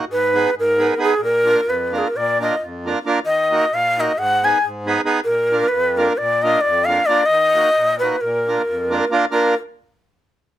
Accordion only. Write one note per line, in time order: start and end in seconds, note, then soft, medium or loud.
0.09 0.45 G#2 medium
0.34 0.50 B3 medium
0.34 0.50 D#4 medium
0.34 0.50 G#4 medium
0.34 0.51 B4 medium
0.57 0.90 G#2 medium
0.78 0.94 B3 medium
0.78 0.94 D#4 medium
0.78 0.94 G#4 medium
0.78 0.94 B4 medium
0.98 1.14 B3 medium
0.98 1.14 D#4 medium
0.98 1.14 G#4 medium
0.98 1.15 B4 medium
1.19 1.55 A#2 medium
1.45 1.60 A#3 medium
1.45 1.61 D4 medium
1.45 1.61 F4 medium
1.45 1.61 A#4 medium
1.66 2.02 F2 medium
1.92 2.07 A#3 medium
1.92 2.07 D4 medium
1.92 2.08 F4 medium
1.92 2.08 A#4 medium
2.15 2.50 A#2 medium
2.40 2.55 A#3 medium
2.40 2.55 D4 medium
2.40 2.55 F4 medium
2.40 2.56 A#4 medium
2.62 2.94 F2 medium
2.85 2.99 A#3 medium
2.85 2.99 D4 medium
2.85 2.99 F4 medium
2.85 3.00 A#4 medium
3.05 3.19 A#3 medium
3.05 3.19 D4 medium
3.05 3.19 F4 medium
3.05 3.20 A#4 loud
3.25 3.60 D#3 medium
3.51 3.65 A#3 medium
3.51 3.65 D#4 medium
3.51 3.66 F#4 medium
3.51 3.66 A#4 medium
3.73 4.07 A#2 medium
3.98 4.12 A#3 medium
3.98 4.12 D#4 medium
3.98 4.13 F#4 medium
3.98 4.13 A#4 medium
4.17 4.53 G#2 medium
4.43 4.57 B3 medium
4.43 4.58 D#4 medium
4.43 4.58 G#4 medium
4.43 4.59 B4 medium
4.64 4.97 G#2 medium
4.86 5.01 B3 medium
4.86 5.01 D#4 medium
4.86 5.01 G#4 medium
4.86 5.02 B4 medium
5.05 5.20 B3 medium
5.05 5.20 D#4 medium
5.05 5.20 G#4 medium
5.05 5.21 B4 loud
5.26 5.62 A#2 medium
5.51 5.67 A#3 medium
5.51 5.67 D4 medium
5.51 5.67 F4 medium
5.51 5.67 A#4 medium
5.72 6.08 F2 medium
5.97 6.13 A#3 medium
5.97 6.13 D4 medium
5.97 6.13 F4 medium
5.97 6.14 A#4 medium
6.20 6.55 A#2 medium
6.43 6.59 A#3 medium
6.43 6.59 D4 medium
6.43 6.59 F4 medium
6.43 6.60 A#4 medium
6.66 6.99 F2 medium
6.88 7.03 A#3 medium
6.88 7.03 D4 medium
6.88 7.03 F4 medium
6.88 7.04 A#4 medium
7.08 7.23 A#3 medium
7.08 7.23 D4 medium
7.08 7.23 F4 medium
7.08 7.24 A#4 medium
7.29 7.64 D#3 medium
7.54 7.69 A#3 medium
7.54 7.70 D#4 medium
7.54 7.70 F#4 medium
7.54 7.70 A#4 medium
7.77 8.11 A#2 medium
8.02 8.16 A#3 medium
8.02 8.16 D#4 medium
8.02 8.16 F#4 medium
8.02 8.16 A#4 medium
8.22 8.57 A#2 medium
8.47 8.62 A#3 medium
8.47 8.62 D4 medium
8.47 8.62 F4 medium
8.47 8.62 A#4 medium
8.68 9.00 F2 medium
8.90 9.04 A#3 medium
8.90 9.05 D4 medium
8.90 9.05 F4 medium
8.90 9.05 A#4 medium
9.11 9.25 A#3 loud
9.11 9.25 D4 medium
9.11 9.25 F4 medium
9.11 9.26 A#4 loud
9.31 9.55 A#3 medium
9.31 9.54 D4 medium
9.31 9.55 F4 medium
9.31 9.55 A#4 medium